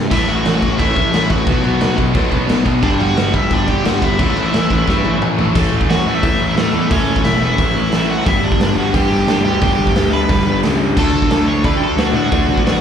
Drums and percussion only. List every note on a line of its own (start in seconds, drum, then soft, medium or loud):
0.11 kick loud
0.11 crash loud
0.11 crash medium
0.29 crash medium
0.45 snare loud
0.45 crash medium
0.62 kick medium
0.62 crash medium
0.79 kick loud
0.79 crash medium
0.96 kick medium
0.96 crash medium
1.13 snare loud
1.13 crash medium
1.30 kick medium
1.30 crash medium
1.46 kick loud
1.46 crash medium
1.64 crash medium
1.81 snare loud
1.81 crash medium
1.98 kick medium
1.98 crash medium
2.15 kick loud
2.15 crash medium
2.32 kick medium
2.32 crash medium
2.49 snare loud
2.49 crash medium
2.66 kick loud
2.66 crash medium
2.83 kick loud
2.83 crash medium
3.00 crash medium
3.17 snare loud
3.17 crash medium
3.34 kick medium
3.34 crash medium
3.51 kick loud
3.51 crash medium
3.68 kick medium
3.68 crash medium
3.85 snare loud
3.85 crash loud
4.02 kick medium
4.02 crash medium
4.19 kick loud
4.19 crash medium
4.37 crash medium
4.53 snare loud
4.53 crash medium
4.70 kick medium
4.70 crash medium
4.88 kick loud
4.88 snare medium
5.05 high tom medium
5.22 mid tom loud
5.39 floor tom medium
5.55 kick loud
5.55 crash loud
5.81 kick medium
5.90 snare loud
5.90 open hi-hat medium
6.23 kick loud
6.23 open hi-hat medium
6.57 snare loud
6.57 open hi-hat medium
6.91 kick loud
6.91 open hi-hat medium
7.16 kick medium
7.24 snare loud
7.24 open hi-hat medium
7.58 kick loud
7.58 open hi-hat medium
7.92 snare loud
7.92 open hi-hat medium
8.26 kick loud
8.26 open hi-hat medium
8.52 kick medium
8.60 snare loud
8.60 open hi-hat medium
8.94 kick loud
8.94 open hi-hat medium
9.28 snare loud
9.28 open hi-hat medium
9.62 kick loud
9.62 open hi-hat medium
9.87 kick medium
9.95 snare loud
9.95 open hi-hat medium
10.29 kick loud
10.29 open hi-hat medium
10.63 snare loud
10.63 open hi-hat medium
10.97 kick loud
10.97 crash loud
11.22 kick medium
11.30 snare loud
11.30 open hi-hat medium
11.64 kick loud
11.64 open hi-hat medium
11.98 snare loud
11.98 open hi-hat medium
12.32 kick loud
12.32 open hi-hat medium
12.57 kick medium
12.66 snare loud
12.66 open hi-hat medium